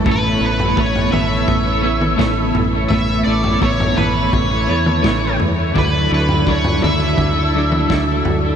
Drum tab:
SD |------------o---|------------o---|------------o---|
T2 |------o----o----|------o----o----|------o----o----|
FT |o--o-oo-o-----o-|o--o-oo-o-----o-|o--o-oo-o-----o-|
BD |o---o---o---o---|o---o---o---o---|o---o---o---o---|